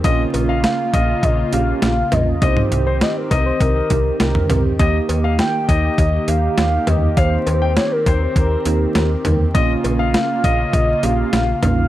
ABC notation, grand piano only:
X:1
M:4/4
L:1/16
Q:1/4=101
K:Ebmix
V:1 name="Grand piano"
e2 z f z2 e4 z6 | e2 z c z2 e4 z6 | e2 z f z2 e4 z6 | f2 z g z2 c4 z6 |
e2 z f z2 e4 z6 |]